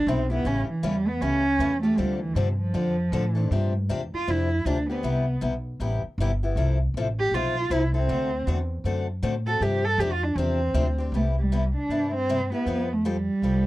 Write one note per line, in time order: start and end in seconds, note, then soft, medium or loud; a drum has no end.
0.07 0.44 B1 loud
0.07 0.19 C3 medium
0.07 0.19 G3 medium
0.07 0.19 B3 medium
0.07 0.31 C4 medium
0.07 0.19 E4 medium
0.07 0.19 G4 medium
0.30 0.46 B3 soft
0.30 0.48 B3 medium
0.30 0.45 E4 medium
0.30 0.44 G4 medium
0.45 0.67 A1 medium
0.45 0.66 C#3 medium
0.45 0.66 E3 medium
0.45 0.66 A3 medium
0.45 0.68 C#4 medium
0.45 0.67 C#4 medium
0.45 0.67 G4 medium
0.68 0.87 E3 medium
0.68 muted upright bass stroke soft
0.83 1.20 E2 medium
0.83 0.94 C#3 medium
0.83 0.94 E3 medium
0.83 1.09 G3 medium
0.83 0.95 A3 medium
0.83 0.95 C#4 medium
0.83 0.95 G4 medium
1.08 1.23 B3 medium
1.21 1.58 C#2 medium
1.21 1.42 C#3 medium
1.21 1.43 E3 medium
1.21 1.43 A3 medium
1.21 1.82 C#4 loud
1.21 1.43 C#4 medium
1.21 1.43 G4 medium
1.59 1.96 E2 medium
1.59 1.71 C#3 medium
1.59 1.71 E3 medium
1.59 1.71 A3 loud
1.59 1.71 C#4 medium
1.59 1.71 G4 medium
1.82 1.99 A3 medium
1.82 1.98 A3 soft
1.82 1.98 C#4 medium
1.82 1.98 G4 medium
1.98 2.35 D2 medium
1.98 2.19 D3 medium
1.98 2.19 F3 medium
1.98 2.20 G3 medium
1.98 2.19 C4 medium
1.98 2.19 D4 medium
1.98 2.19 A4 medium
2.21 2.38 E3 medium
2.35 2.73 G2 medium
2.35 2.59 C3 medium
2.35 2.47 D3 medium
2.35 2.47 F3 medium
2.35 2.47 C4 medium
2.35 2.47 D4 medium
2.35 2.48 A4 loud
2.59 3.47 F3 medium
2.74 3.11 F2 medium
2.74 2.95 D3 medium
2.74 2.95 F3 medium
2.74 2.95 C4 medium
2.74 2.95 D4 medium
2.74 2.95 A4 medium
3.12 3.49 A2 medium
3.12 3.24 D3 medium
3.12 3.24 F3 medium
3.12 3.24 C4 medium
3.12 3.24 D4 medium
3.12 3.24 A4 loud
3.35 3.51 C4 soft
3.35 3.50 D4 medium
3.35 3.50 A4 medium
3.51 3.88 G2 medium
3.51 3.72 C3 medium
3.51 3.72 F3 medium
3.51 3.72 C4 medium
3.51 3.72 D4 medium
3.51 3.72 G4 medium
3.89 4.11 E2 medium
3.89 4.00 C3 medium
3.89 4.00 F3 medium
3.89 4.00 C4 loud
3.89 4.00 D4 medium
3.89 4.01 G4 medium
4.13 4.32 F4 medium
4.13 muted upright bass stroke soft
4.27 4.64 F2 medium
4.27 4.48 C3 medium
4.27 4.48 F3 medium
4.27 4.48 C4 medium
4.27 4.48 D4 medium
4.27 4.69 E4 medium
4.27 4.49 G4 medium
4.65 5.02 D2 medium
4.65 4.77 C3 medium
4.65 4.77 F3 medium
4.65 4.77 C4 medium
4.65 4.77 D4 loud
4.65 4.89 D4 medium
4.65 4.77 G4 medium
4.90 5.39 B3 medium
4.90 5.04 C4 soft
4.90 5.04 D4 medium
4.90 5.03 G4 medium
5.03 5.40 C2 medium
5.03 5.24 C3 medium
5.03 5.24 G3 medium
5.03 5.25 B3 medium
5.03 5.25 E4 medium
5.03 5.25 G4 medium
5.41 5.79 B1 medium
5.41 5.52 C3 medium
5.41 5.52 G3 medium
5.41 5.53 B3 medium
5.41 5.53 E4 medium
5.41 5.53 G4 medium
5.80 6.01 A1 medium
5.80 6.01 C3 medium
5.80 6.01 G3 medium
5.80 6.01 B3 medium
5.80 6.01 E4 medium
5.80 6.01 G4 medium
6.04 muted upright bass stroke soft
6.18 6.55 G1 medium
6.18 6.30 C3 medium
6.18 6.30 G3 medium
6.18 6.30 B3 medium
6.18 6.31 E4 medium
6.18 6.31 G4 loud
6.43 6.57 B3 soft
6.43 6.57 E4 medium
6.43 6.56 G4 medium
6.56 6.93 C2 medium
6.56 6.77 C3 medium
6.56 6.77 F3 medium
6.56 6.78 C4 medium
6.56 6.78 E4 medium
6.56 6.78 A4 medium
6.94 7.31 A1 medium
6.94 7.07 C3 medium
6.94 7.07 F3 medium
6.94 7.07 C4 medium
6.94 7.07 E4 medium
6.94 7.07 A4 medium
7.20 7.36 G4 loud
7.31 7.69 B1 medium
7.31 7.54 C3 medium
7.31 7.54 F3 medium
7.31 7.54 C4 medium
7.31 7.54 E4 medium
7.31 7.74 F4 loud
7.36 7.55 A4 medium
7.70 8.07 C2 medium
7.70 7.82 C3 medium
7.70 7.82 F3 medium
7.70 7.82 C4 medium
7.70 7.82 E4 loud
7.70 7.95 E4 medium
7.70 7.82 A4 loud
7.94 8.44 C4 loud
7.94 8.08 C4 soft
7.94 8.08 E4 soft
7.94 8.08 A4 medium
8.09 8.46 D2 loud
8.09 8.29 D3 medium
8.09 8.30 A3 medium
8.09 8.30 C4 medium
8.09 8.30 F#4 medium
8.09 8.30 A4 medium
8.47 8.83 E2 medium
8.47 8.58 D3 medium
8.47 8.58 A3 medium
8.47 8.58 C4 medium
8.47 8.58 F#4 medium
8.47 8.58 A4 loud
8.84 9.21 F#2 medium
8.84 9.06 D3 medium
8.84 9.06 A3 medium
8.84 9.06 C4 medium
8.84 9.06 F#4 medium
8.84 9.06 A4 medium
9.22 9.60 A2 medium
9.22 9.34 D3 medium
9.22 9.34 A3 medium
9.22 9.34 C4 medium
9.22 9.34 F#4 medium
9.22 9.34 A4 medium
9.47 9.61 C4 medium
9.47 9.61 F#4 medium
9.47 9.61 A4 medium
9.47 9.64 A4 loud
9.60 9.97 G2 medium
9.60 9.82 C3 medium
9.60 9.82 F3 medium
9.60 9.82 C4 medium
9.60 9.82 D4 medium
9.60 9.86 G4 loud
9.60 9.83 G4 medium
9.84 10.01 A4 loud
9.98 10.35 F2 medium
9.98 10.11 C3 medium
9.98 10.11 F3 medium
9.98 10.11 C4 medium
9.98 10.11 D4 medium
9.98 10.14 G4 loud
9.98 10.11 G4 loud
10.12 10.25 F4 loud
10.24 10.38 D4 medium
10.36 10.73 E2 medium
10.36 10.58 C3 medium
10.36 10.58 F3 medium
10.36 10.98 C4 medium
10.36 10.59 C4 medium
10.36 10.59 D4 medium
10.36 10.59 G4 medium
10.74 11.11 D2 loud
10.74 10.86 C3 medium
10.74 10.86 F3 medium
10.74 10.86 C4 medium
10.74 10.86 D4 loud
10.74 10.86 G4 loud
10.98 11.14 C4 soft
10.98 11.14 D4 medium
10.98 11.13 G4 medium
11.12 11.73 C2 medium
11.12 11.34 C3 medium
11.12 11.34 G3 medium
11.12 11.25 A3 medium
11.12 11.35 B3 medium
11.12 11.35 E4 medium
11.12 11.35 G4 medium
11.38 11.73 G3 medium
11.52 11.63 C3 medium
11.52 11.63 G3 medium
11.52 11.63 B3 medium
11.52 11.63 E4 medium
11.52 11.63 G4 medium
11.76 12.11 D4 medium
11.89 12.50 G2 medium
11.89 12.11 C3 medium
11.89 12.11 G3 medium
11.89 12.11 B3 medium
11.89 12.11 E4 medium
11.89 12.11 G4 medium
12.15 12.49 C4 loud
12.29 12.40 C3 medium
12.29 12.40 G3 medium
12.29 12.40 B3 medium
12.29 12.40 E4 medium
12.29 12.40 G4 medium
12.52 12.94 B3 medium
12.52 12.67 B3 soft
12.52 12.67 E4 soft
12.52 12.66 G4 medium
12.66 13.27 F2 medium
12.66 12.87 F3 medium
12.66 12.87 G3 medium
12.66 12.87 C4 medium
12.66 12.88 G4 medium
12.66 12.88 A4 medium
12.93 13.10 A3 medium
13.05 13.16 F3 medium
13.05 13.16 G3 medium
13.05 13.67 G3 loud
13.05 13.16 C4 medium
13.05 13.16 G4 medium
13.05 13.16 A4 medium
13.42 13.67 C2 medium
13.42 13.63 F3 medium
13.42 13.64 G3 medium
13.42 13.64 C4 medium
13.42 13.64 G4 medium
13.42 13.64 A4 medium